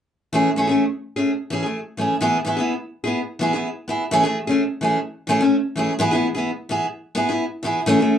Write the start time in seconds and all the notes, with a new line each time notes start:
0.33 E3 A3 C#4 G#4
0.56 E3 A3 C#4 G#4
0.67 A3 C#4 G#4
1.16 A3 C#4 G#4
1.50 E3 C#4 G#4
1.63 A3 G#4
1.97 E3 A3 C#4 G#4
2.21 E3 B3 E4 G#4
2.45 E3 B3 E4 G#4
2.57 B3 E4 G#4
3.04 B3 E4 G#4
3.39 E3 B3 E4 G#4
3.53 B3 E4 G#4
3.88 B3 E4 G#4
4.11 E3 A3 C#4 G#4
4.23 A3 G#4, muted steel-string acoustic guitar stroke
4.47 A3 C#4 G#4
4.81 E3 A3 C#4 G#4
5.27 E3 A3 C#4 G#4
5.41 A3 C#4, muted steel-string acoustic guitar stroke
5.76 E3 A3 C#4 G#4
5.99 E3 B3 E4 G#4
6.11 B3 E4 G#4
6.35 B3 E4 G#4
6.69 E3 B3 E4 G#4
7.15 B3 E4 G#4, muted steel-string acoustic guitar stroke
7.29 B3 E4 G#4
7.63 E3 B3 E4 G#4
7.86 E3 A3 C#4 G#4
7.99 A3 C#4 G#4